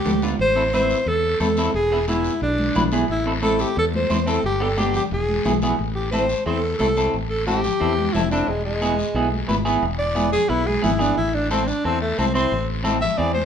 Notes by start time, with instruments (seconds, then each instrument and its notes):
Already playing: alto saxophone G4
0.05 fingered electric bass D2, clean electric guitar B3 D4 A4, high conga, low conga, short guiro
0.22 clean electric guitar B3 D4 F4, short guiro
0.39 fingered electric bass A1, alto saxophone C5, long guiro
0.56 clean electric guitar C4 E4 A4
0.73 clean electric guitar C4 E4 B4, alto saxophone C5, high conga, short guiro
0.90 short guiro
1.06 fingered electric bass E2, alto saxophone A4, long guiro
1.40 fingered electric bass E2, clean electric guitar C4 E4 A4, alto saxophone A4, high conga, short guiro
1.57 clean electric guitar C4 E4 A4, short guiro
1.74 fingered electric bass E1, alto saxophone G#4, long guiro
1.92 clean electric guitar B3 E4 G#4
2.08 clean electric guitar B3 E4 G#4, alto saxophone E4, high conga, short guiro
2.24 short guiro
2.41 fingered electric bass B1, alto saxophone D4, long guiro
2.58 high conga
2.75 fingered electric bass B1, clean electric guitar B3 E4 B4, high conga, low conga, short guiro
2.92 clean electric guitar B3 E4 G#4, short guiro
3.08 fingered electric bass A1, alto saxophone E4, long guiro
3.26 clean electric guitar C4 E4 A4
3.42 clean electric guitar C4 E4 A4, alto saxophone A4, high conga, short guiro
3.59 alto saxophone G4, short guiro
3.76 fingered electric bass E2, alto saxophone A4, long guiro
3.93 alto saxophone C5, high conga
4.10 fingered electric bass E2, clean electric guitar C4 E4 C5, high conga, short guiro
4.26 clean electric guitar C4 E4 A4, alto saxophone A4, short guiro
4.44 fingered electric bass G1, alto saxophone G4, long guiro
4.60 clean electric guitar B3 D4 G4, alto saxophone A4
4.77 clean electric guitar B3 D4 G4, alto saxophone G4, high conga, short guiro
4.94 alto saxophone G4, low conga, short guiro
5.11 fingered electric bass E1, alto saxophone G#4, long guiro
5.28 high conga
5.45 fingered electric bass B1, clean electric guitar B3 E4 G#4, high conga, low conga, short guiro
5.62 clean electric guitar B3 E4 G#4, short guiro
5.79 fingered electric bass A1, long guiro
5.95 alto saxophone G4
6.11 clean electric guitar C4 E4 A4, alto saxophone C5, high conga, short guiro
6.29 short guiro
6.46 fingered electric bass E2, clean electric guitar C4 E4 C5, alto saxophone A4, long guiro
6.79 fingered electric bass C2, clean electric guitar C4 E4 A4, alto saxophone A4, high conga, short guiro
6.97 clean electric guitar C4 E4 A4, short guiro
7.14 fingered electric bass A1, long guiro
7.29 alto saxophone A4
7.47 clean electric guitar C4 E4 A4, alto saxophone G4, high conga, short guiro
7.64 low conga, short guiro
7.80 fingered electric bass E2, clean electric guitar C4 E4 A4, long guiro
7.98 high conga
8.13 fingered electric bass F1, clean electric guitar C4 E4 A4, alto saxophone E4, high conga, low conga, short guiro
8.31 clean electric guitar C4 E4 A4, alto saxophone D4, short guiro
8.48 fingered electric bass E1, alto saxophone G#3, long guiro
8.65 alto saxophone G#3
8.81 clean electric guitar B3 E4 G#4, high conga, short guiro
8.99 short guiro
9.14 fingered electric bass B1, clean electric guitar B3 E4 G#4, long guiro
9.32 high conga
9.48 fingered electric bass G#1, clean electric guitar B3 E4 B4, high conga, short guiro
9.65 clean electric guitar B3 E4 G#4, short guiro
9.83 fingered electric bass E1, long guiro
9.99 alto saxophone D5
10.15 clean electric guitar B3 E4 G#4, high conga, short guiro
10.32 alto saxophone G#4, low conga, short guiro
10.49 fingered electric bass B1, clean electric guitar B3 E4 B4, alto saxophone E4, long guiro
10.67 alto saxophone G#4, high conga
10.82 fingered electric bass G#1, clean electric guitar B3 E4 G#4, alto saxophone E4, high conga, low conga, short guiro
10.99 clean electric guitar B3 E4 G#4, alto saxophone D4, short guiro
11.17 fingered electric bass A1, alto saxophone E4, long guiro
11.34 alto saxophone D4
11.51 clean electric guitar C4 E4 A4, alto saxophone C4, high conga, short guiro
11.67 alto saxophone D4, short guiro
11.84 fingered electric bass E2, clean electric guitar C4 E4 A4, alto saxophone C4, long guiro
12.01 alto saxophone A3
12.18 fingered electric bass C2, clean electric guitar C4 E4 A4, alto saxophone C4, high conga, short guiro
12.34 clean electric guitar C4 E4 C5, alto saxophone C4, short guiro
12.52 fingered electric bass A1, long guiro
12.84 clean electric guitar C4 E4 A4, high conga, short guiro
13.01 alto saxophone E5, low conga, short guiro
13.18 fingered electric bass E2, clean electric guitar C4 E4 G#4, alto saxophone D5, long guiro
13.34 alto saxophone C5, high conga